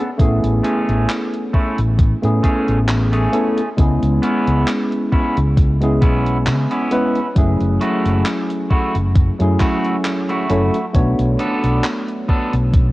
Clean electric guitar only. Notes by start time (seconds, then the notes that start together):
0.64 A3 C#4 G#4
1.53 A3 C#4 E4
1.98 muted clean electric guitar stroke
2.43 A3 C#4 G#4
3.12 A3 C#4 G#4
4.22 B3 C#4 E4
5.12 B3 C#4 E4
5.57 muted clean electric guitar stroke
6.02 B3 C#4 E4
6.71 B3 C#4 E4
7.81 A3 E4 F#4
8.70 A3 E4 F#4
9.15 muted clean electric guitar stroke
9.60 A3 E4 F#4
10.29 A3 E4 F#4
11.39 B3 D4 A4
12.28 B3 D4 A4
12.73 muted clean electric guitar stroke